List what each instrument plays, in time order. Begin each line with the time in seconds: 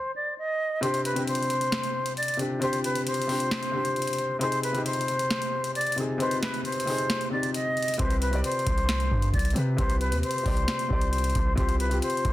Already playing: flute C5
0.16 flute D5
0.38 flute D#5
0.81 felt piano C3 C4 D4, flute C5, closed hi-hat
0.85 felt piano G4
0.94 closed hi-hat
1.05 flute B4, closed hi-hat
1.14 felt piano C3 C4 D4, closed hi-hat
1.18 felt piano G4
1.28 flute C5, closed hi-hat
1.35 closed hi-hat
1.42 closed hi-hat
1.50 closed hi-hat
1.61 closed hi-hat
1.72 snare, closed hi-hat
1.83 closed hi-hat
2.06 closed hi-hat
2.17 flute D5, closed hi-hat
2.23 closed hi-hat
2.28 closed hi-hat
2.34 felt piano C3, closed hi-hat
2.38 felt piano C4 D4 G4, closed hi-hat
2.59 felt piano C3 C4 D4, flute C5, closed hi-hat
2.64 felt piano G4
2.73 closed hi-hat
2.84 flute B4, closed hi-hat
2.95 closed hi-hat
3.07 flute C5, closed hi-hat
3.14 closed hi-hat
3.22 closed hi-hat
3.27 felt piano C3 C4 D4, open hi-hat
3.32 felt piano G4
3.40 closed hi-hat
3.51 snare, closed hi-hat
3.63 closed hi-hat
3.72 felt piano C3 C4 D4
3.76 felt piano G4
3.85 closed hi-hat
3.96 closed hi-hat
4.02 closed hi-hat
4.07 closed hi-hat
4.13 closed hi-hat
4.19 closed hi-hat
4.39 felt piano C3 C4 D#4, flute C5, closed hi-hat
4.43 felt piano G#4
4.52 closed hi-hat
4.63 flute B4, closed hi-hat
4.73 felt piano C3 C4 D#4, closed hi-hat
4.77 felt piano G4
4.86 flute C5, closed hi-hat
4.93 closed hi-hat
5.01 closed hi-hat
5.08 closed hi-hat
5.19 closed hi-hat
5.30 snare, closed hi-hat
5.42 closed hi-hat
5.64 closed hi-hat
5.75 flute D5, closed hi-hat
5.81 closed hi-hat
5.87 closed hi-hat
5.92 felt piano C3, closed hi-hat
5.97 felt piano C4 D#4 G#4, closed hi-hat
6.18 felt piano C3 C4 D#4, flute C5, closed hi-hat
6.22 felt piano B4
6.31 closed hi-hat
6.42 flute B4, snare, closed hi-hat
6.54 closed hi-hat
6.65 flute C5, closed hi-hat
6.72 closed hi-hat
6.80 closed hi-hat
6.86 felt piano C3 C4 D#4, open hi-hat
6.90 felt piano G#4
6.98 closed hi-hat
7.10 snare, closed hi-hat
7.21 closed hi-hat
7.30 felt piano C3 C4 D#4, flute D5
7.34 felt piano G4
7.43 closed hi-hat
7.54 flute D#5, closed hi-hat
7.77 closed hi-hat
7.83 closed hi-hat
7.88 closed hi-hat
7.94 closed hi-hat
7.98 808-style bass C2, felt piano C3 C4 G4, flute C5, kick, closed hi-hat
8.02 felt piano B4
8.10 closed hi-hat
8.21 flute B4, closed hi-hat
8.31 felt piano C3 C4 G4, closed hi-hat
8.35 felt piano D5
8.44 flute C5, closed hi-hat
8.52 closed hi-hat
8.59 closed hi-hat
8.67 808-style bass C2, kick, closed hi-hat
8.78 closed hi-hat
8.89 snare, closed hi-hat
9.00 closed hi-hat
9.11 808-style bass G2, kick
9.22 closed hi-hat
9.33 808-style bass C2, flute D5, kick, closed hi-hat
9.39 closed hi-hat
9.45 closed hi-hat
9.50 felt piano C3, closed hi-hat
9.55 808-style bass C3, felt piano C4 G4 B4, closed hi-hat
9.76 808-style bass C2, felt piano C3 C4 G4, flute C5, kick, closed hi-hat
9.81 felt piano B4
9.90 closed hi-hat
10.01 flute B4, closed hi-hat
10.12 808-style bass D#2, closed hi-hat
10.23 flute C5, closed hi-hat
10.31 closed hi-hat
10.38 closed hi-hat
10.43 808-style bass C2, felt piano C3 C4 G4, kick, open hi-hat
10.47 felt piano D5
10.57 closed hi-hat
10.68 snare, closed hi-hat
10.79 closed hi-hat
10.88 808-style bass C2, felt piano C3 C4 G4, kick
10.93 felt piano D5
11.01 closed hi-hat
11.13 closed hi-hat
11.18 closed hi-hat
11.24 closed hi-hat
11.30 closed hi-hat
11.35 808-style bass C2, kick, closed hi-hat
11.55 808-style bass C2, felt piano C3 C4 F4, flute C5, kick, closed hi-hat
11.60 felt piano G4
11.69 closed hi-hat
11.80 flute B4, closed hi-hat
11.89 felt piano C3 C4 F4, closed hi-hat
11.94 felt piano G4
12.02 flute C5, closed hi-hat
12.10 closed hi-hat
12.17 closed hi-hat
12.25 808-style bass C2, kick, closed hi-hat